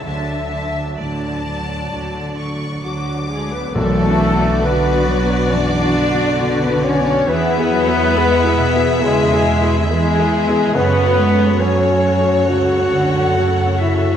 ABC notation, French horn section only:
X:1
M:4/4
L:1/16
Q:1/4=68
K:Bdor
V:1 name="French horn section"
z12 F,2 G, B, | A,4 B,4 D4- D B, C2 | B,8 G,4 G,4 | B,4 C4 F6 E2 |]